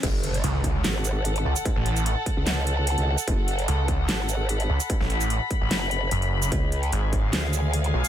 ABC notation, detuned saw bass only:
X:1
M:4/4
L:1/16
Q:"Swing 16ths" 1/4=148
K:F#m
V:1 name="Detuned saw bass" clef=bass
z4 C,,4 z6 C,, z | z A,,,4 z8 z3 | z4 C,,4 z6 C,, z | z A,,,4 z2 A,,, z4 F,,,4 |
z4 G,,,4 z6 B,,, z |]